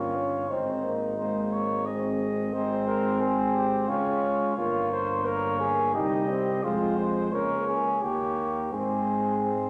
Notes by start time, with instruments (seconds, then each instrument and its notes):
Already playing: tuba G1, french horn A#3, trombone C#4, flugelhorn F4, trumpet C#5
0.16 french horn C#4
0.49 tuba G#1, french horn C4, trombone C4, flugelhorn D#4, trumpet C5
0.84 french horn A#3
1.18 french horn G#3, trombone A#3, trumpet C5
1.52 trumpet C#5
1.86 trombone G#3, french horn C4, trumpet D#5
2.53 tuba G#1, french horn G#3, trombone C4, flugelhorn D#4, trumpet C5
2.87 flugelhorn A#4
3.20 french horn G#3, flugelhorn G#4, trumpet C5
3.55 flugelhorn G4
3.88 tuba C#2, french horn G#3, trombone C#4, flugelhorn F4, trumpet C#5
4.56 tuba G1, trombone A#3, french horn A#3, flugelhorn F4, trumpet C#5
4.92 flugelhorn C5
5.25 french horn A#3, flugelhorn A#4, trumpet C#5
5.60 flugelhorn G#4
5.94 tuba C2, french horn G3, trombone D#4, flugelhorn G4, trumpet D#5
6.29 trombone C4
6.63 tuba F2, trombone G#3, french horn G#3, flugelhorn F4, trumpet C5
6.97 flugelhorn C5
7.32 tuba C#2, french horn A#3, trombone C#4, flugelhorn A#4, trumpet C#5
7.68 flugelhorn G#4
8.02 tuba D#2, french horn A#3, trombone A#3, flugelhorn G4, trumpet C#5
8.73 tuba G#2, french horn G#3, trombone C4, flugelhorn G#4, trumpet C5
9.44 trumpet C5